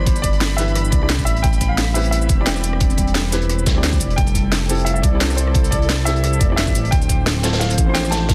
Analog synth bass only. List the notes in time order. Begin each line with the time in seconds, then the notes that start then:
Already playing: G1
0.92 C2
1.26 A1
1.44 A1
2.29 E1
3.66 D2
4.00 E1
4.18 F1
5.04 C2
6.41 F1
6.75 A1
6.92 D1
7.78 A1